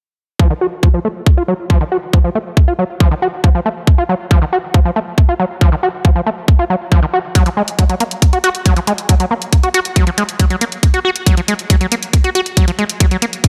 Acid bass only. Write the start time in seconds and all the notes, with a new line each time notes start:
0.40 F3
0.50 D#3
0.61 F#4
0.83 F3
0.94 F3
1.05 A3
1.37 F4
1.48 F#3
1.70 F3
1.81 D#3
1.92 F#4
2.13 F3
2.24 F3
2.35 A3
2.68 F4
2.79 F#3
3.00 F3
3.11 D#3
3.22 F#4
3.44 F3
3.55 F3
3.66 A3
3.98 F4
4.09 F#3
4.31 F3
4.42 D#3
4.53 F#4
4.74 F3
4.85 F3
4.96 A3
5.29 F4
5.40 F#3
5.61 F3
5.72 D#3
5.83 F#4
6.05 F3
6.16 F3
6.26 A3
6.59 F4
6.70 F#3
6.92 F3
7.03 D#3
7.13 F#4
7.35 F#3
7.46 F3
7.57 G#3
7.79 F#3
7.90 F#3
8.00 A#3
8.33 F#4
8.44 F#4
8.66 F#3
8.76 F3
8.87 G#3
9.09 F#3
9.20 F#3
9.31 A#3
9.63 F#4
9.74 F#4
9.96 F#3
10.07 F3
10.18 G#3
10.40 F#3
10.50 F#3
10.61 A#3
10.94 F#4
11.05 F#4
11.26 F#3
11.37 F3
11.48 G#3
11.70 F#3
11.81 F#3
11.92 A#3
12.24 F#4
12.35 F#4
12.57 F#3
12.68 F3
12.79 G#3
13.00 F#3
13.11 F#3
13.22 A#3